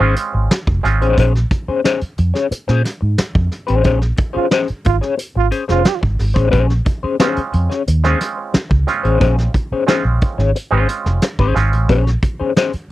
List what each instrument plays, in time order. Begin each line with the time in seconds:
0.00 fingered electric bass G#1, clav G#3 C4 C#4 F4, clean electric guitar C#4 G#4 C5
0.16 muted clean electric guitar stroke, closed hi-hat
0.33 fingered electric bass G#1, muted clean electric guitar stroke
0.51 muted clean electric guitar stroke, snare, closed hi-hat
0.67 fingered electric bass F1, muted clean electric guitar stroke, kick
0.83 fingered electric bass G#1, clav G#3 C4 C#4 F4, snare, closed hi-hat
1.01 fingered electric bass A1, clean electric guitar C#4 G#4 C5, closed hi-hat
1.18 fingered electric bass A#1, clean electric guitar C#4 G#4 C5, kick, closed hi-hat
1.35 snare
1.51 muted clean electric guitar stroke, kick, closed hi-hat
1.68 clean electric guitar C#4 G#4 C5, muted fingered electric bass stroke
1.84 clean electric guitar C#4 G#4 C5, snare, closed hi-hat
2.01 muted fingered electric bass stroke, closed hi-hat
2.18 fingered electric bass F2, muted clean electric guitar stroke, closed hi-hat
2.34 clean electric guitar C#4 G#4 C#5, snare
2.51 muted clean electric guitar stroke, muted fingered electric bass stroke, closed hi-hat
2.68 fingered electric bass A#2, clean electric guitar C#4 G#4 C5, snare
2.84 muted clean electric guitar stroke, snare, closed hi-hat
3.01 fingered electric bass G#2, muted clean electric guitar stroke
3.18 muted clean electric guitar stroke, muted fingered electric bass stroke, snare, closed hi-hat
3.35 fingered electric bass F2, muted clean electric guitar stroke, kick
3.52 snare, closed hi-hat
3.67 fingered electric bass A1, clean electric guitar C#4 G#4 C5, closed hi-hat
3.84 fingered electric bass A#1, clean electric guitar C#4 G#4 C5, kick, closed hi-hat
4.01 muted clean electric guitar stroke, snare
4.17 muted clean electric guitar stroke, kick, closed hi-hat
4.33 clean electric guitar C#4 G#4 C5, trombone F4, muted fingered electric bass stroke
4.51 clean electric guitar C#4 G#4 C5, snare, closed hi-hat
4.68 muted fingered electric bass stroke, closed hi-hat
4.84 fingered electric bass G#1, trombone F4, muted clean electric guitar stroke, kick, closed hi-hat
5.01 clean electric guitar C#4 G#4 C#5, snare
5.18 muted clean electric guitar stroke, closed hi-hat
5.35 fingered electric bass G#1, trombone F4, muted clean electric guitar stroke
5.51 clean electric guitar C#4 G#4 C5, closed hi-hat
5.68 fingered electric bass F1, clean electric guitar C#4 G#4 C5, trombone F4, snare
5.85 muted clean electric guitar stroke, snare, closed hi-hat
6.01 fingered electric bass G#1, muted clean electric guitar stroke, kick
6.19 fingered electric bass G#1, snare, open hi-hat
6.34 fingered electric bass A1, clean electric guitar C#4 G#4 C5, kick, closed hi-hat
6.51 fingered electric bass A#1, clean electric guitar C#4 G#4 C5, kick, closed hi-hat
6.69 muted clean electric guitar stroke, snare
6.85 muted clean electric guitar stroke, kick, closed hi-hat
7.03 clean electric guitar C#4 G#4 C5, muted fingered electric bass stroke
7.19 clav G#3 C4 C#4 F4, clean electric guitar C#4 G#4 C5, snare, closed hi-hat
7.36 muted fingered electric bass stroke, closed hi-hat
7.53 fingered electric bass F2, muted clean electric guitar stroke, closed hi-hat
7.70 clean electric guitar C#4 G#4 C#5, snare
7.87 fingered electric bass D#2, muted clean electric guitar stroke, closed hi-hat
8.04 clav G#3 C4 C#4 F4, clean electric guitar C#4 G#4 C5, snare
8.21 snare, closed hi-hat
8.38 muted clean electric guitar stroke
8.54 muted clean electric guitar stroke, muted fingered electric bass stroke, snare, closed hi-hat
8.70 fingered electric bass C#2, muted clean electric guitar stroke, kick
8.87 clav G#3 C4 C#4 F4, snare, closed hi-hat
9.03 fingered electric bass A1, clean electric guitar C#4 G#4 C5, closed hi-hat
9.20 fingered electric bass A#1, clean electric guitar C#4 G#4 C5, kick, closed hi-hat
9.38 muted clean electric guitar stroke, snare
9.54 muted clean electric guitar stroke, kick, closed hi-hat
9.72 clean electric guitar C#4 G#4 C5, muted fingered electric bass stroke
9.87 clav G#3 C4 C#4 F4, clean electric guitar C#4 G#4 C5, snare, closed hi-hat
10.05 fingered electric bass A#1
10.21 muted clean electric guitar stroke, kick, closed hi-hat
10.38 fingered electric bass G#1, clean electric guitar C#4 G#4 C#5, snare
10.55 muted clean electric guitar stroke, closed hi-hat
10.71 fingered electric bass G#1, clav G#3 C4 C#4 D#4, clean electric guitar C#4 G#4 C5
10.78 clav F4
10.89 muted clean electric guitar stroke, closed hi-hat
11.06 fingered electric bass F1, muted clean electric guitar stroke, snare
11.22 muted clean electric guitar stroke, snare, closed hi-hat
11.39 fingered electric bass G#1, clean electric guitar C#4 G#4 C5, kick
11.55 fingered electric bass G#1, clav G#3 C4 C#4 F4, muted clean electric guitar stroke, snare, closed hi-hat
11.72 fingered electric bass A1, muted clean electric guitar stroke, closed hi-hat
11.89 fingered electric bass A#1, clean electric guitar C#4 G#4 C5, kick, closed hi-hat
12.07 muted clean electric guitar stroke, snare
12.23 muted clean electric guitar stroke, kick, closed hi-hat
12.40 clean electric guitar C#4 G#4 C5, muted fingered electric bass stroke
12.56 clean electric guitar C#4 G#4 C5, snare, closed hi-hat
12.73 muted fingered electric bass stroke, closed hi-hat